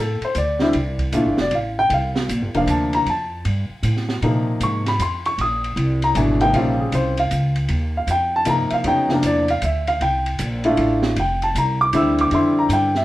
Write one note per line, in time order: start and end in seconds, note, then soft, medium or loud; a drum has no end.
0.00 0.20 A2 medium
0.00 0.23 A4 medium
0.21 0.36 C5 medium
0.21 muted upright bass stroke soft
0.21 ride soft
0.35 0.73 D2 medium
0.35 0.97 D5 medium
0.35 hi-hat pedal soft
0.35 ride medium
0.59 0.73 D3 medium
0.59 0.73 G3 medium
0.59 0.73 C4 medium
0.59 0.73 E4 medium
0.59 snare medium
0.73 1.11 C2 medium
0.73 ride medium
0.99 kick soft
0.99 ride soft
1.12 1.25 A#1 medium
1.12 1.36 E3 medium
1.12 1.36 A3 medium
1.12 1.36 D4 medium
1.12 1.36 F4 medium
1.12 hi-hat pedal soft
1.12 ride medium
1.25 1.38 G1 medium
1.37 1.51 F1 medium
1.37 snare medium
1.42 1.53 D5 medium
1.51 1.89 A1 medium
1.51 ride medium
1.55 1.78 F5 medium
1.79 1.91 G5 loud
1.90 2.27 C2 medium
1.90 ride medium
1.94 2.28 F5 medium
2.15 snare medium
2.29 2.42 A#1 medium
2.29 hi-hat pedal medium
2.29 ride medium
2.42 2.54 G1 medium
2.54 2.65 F1 medium
2.54 3.04 C3 medium
2.54 3.04 F3 medium
2.54 3.04 A#3 medium
2.54 3.04 D4 medium
2.54 2.69 F5 medium
2.54 ride soft
2.66 3.04 D2 medium
2.66 hi-hat pedal medium
2.66 ride medium
2.70 2.93 A5 medium
2.93 3.07 A#5 loud
2.93 ride soft
3.05 3.43 F2 medium
3.05 ride medium
3.10 3.44 A5 medium
3.45 3.68 G2 medium
3.45 ride medium
3.69 muted upright bass stroke soft
3.83 4.20 A2 medium
3.83 hi-hat pedal soft
3.83 ride medium
3.97 snare soft
4.09 snare soft
4.22 4.60 A#2 medium
4.22 4.81 C3 medium
4.22 4.82 F3 medium
4.22 4.82 A#3 medium
4.22 4.82 D#4 medium
4.22 ride medium
4.60 4.98 G#2 medium
4.60 4.87 C#6 medium
4.60 hi-hat pedal medium
4.60 ride medium
4.86 5.00 B5 loud
4.86 snare soft
4.86 ride medium
4.99 5.37 F2 medium
4.99 5.25 C6 medium
4.99 hi-hat pedal medium
4.99 ride medium
5.25 5.38 C#6 loud
5.25 ride soft
5.38 5.75 A#1 medium
5.38 6.00 D#6 loud
5.38 ride medium
5.64 ride soft
5.76 6.14 C2 loud
5.76 ride medium
6.02 6.16 A#5 loud
6.02 ride soft
6.15 6.52 G#1 medium
6.15 6.38 B2 medium
6.15 6.38 E3 medium
6.15 6.39 A3 medium
6.15 6.39 D4 medium
6.15 6.41 G#5 medium
6.15 hi-hat pedal medium
6.15 ride medium
6.41 6.74 C3 medium
6.41 6.75 F3 medium
6.41 6.75 A#3 medium
6.41 6.75 D#4 medium
6.41 6.54 G5 loud
6.41 ride soft
6.52 6.91 A#1 medium
6.52 7.13 C#3 medium
6.52 7.13 G3 medium
6.52 7.13 C4 medium
6.52 6.54 E5 medium
6.52 ride medium
6.56 7.14 F4 medium
6.56 6.79 F5 medium
6.80 6.92 G#4 medium
6.92 7.30 C2 loud
6.92 7.18 C5 medium
6.92 hi-hat pedal medium
6.92 ride medium
7.17 7.54 F5 medium
7.17 ride medium
7.31 7.68 C#2 medium
7.31 hi-hat pedal medium
7.31 ride medium
7.56 ride soft
7.68 8.06 D#2 medium
7.68 ride medium
7.97 8.09 F5 medium
8.07 8.45 F2 medium
8.07 8.34 G5 medium
8.07 hi-hat pedal medium
8.07 ride medium
8.36 8.48 A5 loud
8.45 8.70 G2 medium
8.45 8.85 C3 medium
8.45 8.85 F3 medium
8.45 8.85 A#3 medium
8.45 8.84 D#4 medium
8.45 hi-hat pedal medium
8.45 ride medium
8.49 8.73 A#5 medium
8.70 8.72 E5 medium
8.70 8.86 F5 medium
8.70 muted upright bass stroke soft
8.70 ride soft
8.84 9.22 F2 medium
8.84 9.08 C#3 medium
8.84 9.08 F#3 medium
8.84 9.08 B3 medium
8.84 9.08 D#4 medium
8.84 9.11 G5 loud
8.84 ride medium
9.09 9.44 C3 medium
9.09 9.44 F3 medium
9.09 9.44 A#3 medium
9.09 9.44 D4 medium
9.09 snare soft
9.13 9.25 A#4 medium
9.23 9.60 E2 medium
9.23 9.49 D5 medium
9.23 hi-hat pedal medium
9.23 ride medium
9.48 9.63 F5 medium
9.48 ride medium
9.62 9.99 D2 medium
9.62 9.88 E5 medium
9.62 hi-hat pedal medium
9.62 ride medium
9.87 10.01 F5 loud
9.87 ride soft
10.01 10.38 C2 medium
10.01 10.61 G5 medium
10.01 ride medium
10.26 ride soft
10.39 10.77 A#1 medium
10.39 hi-hat pedal medium
10.39 ride medium
10.64 11.14 A3 medium
10.64 11.14 D4 medium
10.64 11.14 E4 medium
10.64 11.14 F4 medium
10.64 ride medium
10.77 11.15 A1 medium
10.77 ride medium
11.02 snare medium
11.16 11.54 F1 medium
11.16 11.42 G5 medium
11.16 ride medium
11.42 11.55 A5 medium
11.42 ride soft
11.55 11.92 C2 medium
11.55 11.81 A#5 medium
11.55 hi-hat pedal medium
11.55 ride medium
11.81 11.93 D6 loud
11.93 12.30 D2 medium
11.93 12.31 D3 medium
11.93 12.31 G3 medium
11.93 12.32 C4 medium
11.93 12.32 E4 medium
11.93 12.19 E6 loud
11.93 hi-hat pedal medium
11.93 ride medium
12.18 12.33 D6 loud
12.18 ride medium
12.31 12.68 F2 medium
12.31 12.90 D3 medium
12.31 12.91 G3 medium
12.31 12.91 C4 medium
12.31 12.91 E4 medium
12.31 12.58 C6 medium
12.31 ride medium
12.59 12.71 A#5 medium
12.69 13.05 G2 loud
12.69 hi-hat pedal medium
12.69 ride medium
12.73 12.96 G5 medium
12.95 13.05 E5 medium
12.95 snare soft